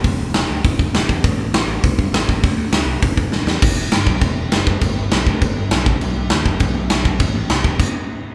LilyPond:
<<
  \new Staff \with { instrumentName = "Picked electric bass" } { \clef bass \time 4/4 \key a \dorian \tempo 4 = 201 e,,8 e,,8 e,,8 d,8 e,,8 e,,8 e,,8 e,8 | a,,8 a,,8 a,,8 a,,8 c,8 g,8 a,,8 a,,8 | d,8 d,8 d,8 c,8 e,,8 e,,8 e,,8 e,8 | e,,8 e,,8 g,,8 b,,8 e,,8 e,,8 fis,,4 |
g,,8 g,,8 b,,8 d,8 g,,8 g,,8 b,,8 b,,8 | b,,8 b,,8 dis,8 fis,,8 b,,8 b,,8 b,,4 | a,,8 a,,8 c,8 e,,8 r2 | }
  \new DrumStaff \with { instrumentName = "Drums" } \drummode { \time 4/4 <hho bd>4 <hho sn>4 <hho bd>8 bd8 <hho sn>8 bd8 | <hho bd>4 <hho sn>4 <hho bd>8 bd8 <hho sn>8 bd8 | <hho bd>4 <hho sn>4 <hho bd>8 bd8 sn8 sn8 | <cymc bd>4 <cymc sn>8 bd8 <cymc bd>4 <cymc sn>8 bd8 |
<cymc bd>4 <cymc sn>8 bd8 <cymc bd>4 <cymc sn>8 bd8 | cymc4 <cymc sn>8 bd8 <cymc bd>4 <cymc sn>8 bd8 | <cymc bd>4 <cymc sn>8 bd8 <cymc bd>4 r4 | }
>>